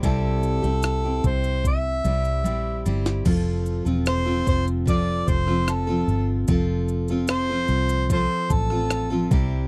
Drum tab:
CC |----------------|x---------------|----------------|
SH |x-xxx-xxx-xxx-xx|x-xxx-xxx-x-x-x-|x-xxx-xxx-x-x-x-|
SD |----r----------o|----r------rr---|----r------rr---|
BD |o-----o-o-------|o-----o-o-o-----|o-------o-o---o-|